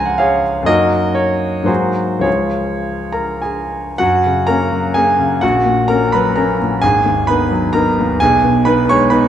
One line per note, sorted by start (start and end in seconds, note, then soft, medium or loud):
0.00 0.61 C#2 medium
0.00 0.62 F3 soft
0.00 0.62 G#3 soft
0.00 0.63 C#4 soft
0.00 0.70 G#5 medium
0.00 0.70 A#5 loud
0.00 0.70 C6 medium
0.06 0.18 F#5 medium
0.18 0.42 G#4 medium
0.18 0.42 C#5 medium
0.18 0.43 F5 medium
0.63 1.63 F#2 medium
0.63 1.63 F#3 soft
0.63 1.63 A#3 soft
0.63 1.16 D#5 medium
0.67 1.65 D#4 soft
0.67 1.13 F#4 medium
0.67 1.13 A#4 medium
1.15 1.68 C#5 medium
1.63 2.21 G#2 soft
1.63 2.22 F#3 soft
1.63 2.22 A#3 soft
1.63 2.23 D#4 soft
1.63 2.25 C5 medium
1.67 2.21 F#4 soft
1.67 2.21 G#4 soft
2.19 3.92 C#2 soft
2.19 3.93 F3 soft
2.19 3.94 G#3 soft
2.19 3.94 C#4 soft
2.19 3.38 F4 soft
2.19 3.38 G#4 soft
2.19 3.42 C#5 medium
3.12 3.41 A#4 soft
3.12 3.42 A#5 medium
3.42 3.96 G#4 soft
3.42 3.99 G#5 medium
3.98 5.39 F#2 medium
3.98 4.45 F#4 medium
3.98 4.47 F#5 medium
4.26 4.63 C#3 soft
4.47 4.69 A#3 soft
4.47 4.70 C#4 soft
4.47 4.91 A#4 medium
4.47 4.94 A#5 medium
4.72 5.09 F#3 soft
4.94 5.17 A#3 soft
4.94 5.17 C#4 soft
4.94 5.40 G#4 medium
4.94 5.42 G#5 medium
5.19 5.43 C#3 soft
5.41 6.79 A#1 medium
5.41 5.87 F#4 medium
5.41 5.90 F#5 medium
5.66 6.04 A#2 soft
5.88 6.12 A#3 soft
5.88 6.11 C#4 soft
5.88 6.12 A#4 medium
5.88 6.13 A#5 medium
6.12 6.51 F#3 soft
6.12 6.36 B4 medium
6.12 6.37 B5 medium
6.36 6.58 A#3 soft
6.36 6.58 C#4 soft
6.36 6.79 A#4 medium
6.36 6.82 A#5 medium
6.62 6.84 A#2 soft
6.82 8.17 G#1 medium
6.82 7.25 G#4 medium
6.82 7.27 G#5 medium
7.06 7.42 D#2 soft
7.27 7.49 B3 soft
7.27 7.50 D#4 soft
7.27 7.71 B4 medium
7.27 7.74 B5 medium
7.51 7.89 F#3 soft
7.73 7.95 B3 soft
7.73 7.96 D#4 soft
7.73 8.17 A#4 medium
7.73 8.20 A#5 medium
7.99 8.21 D#2 soft
8.20 9.28 B1 medium
8.20 8.64 G#4 medium
8.20 8.66 G#5 medium
8.44 8.80 B2 soft
8.65 8.86 B3 soft
8.65 8.87 D#4 soft
8.65 8.87 B4 medium
8.65 8.88 B5 medium
8.89 9.25 G#3 soft
8.89 9.10 C#5 medium
8.89 9.11 C#6 medium
9.10 9.28 B3 soft
9.10 9.28 D#4 medium
9.10 9.28 B4 medium
9.10 9.28 B5 medium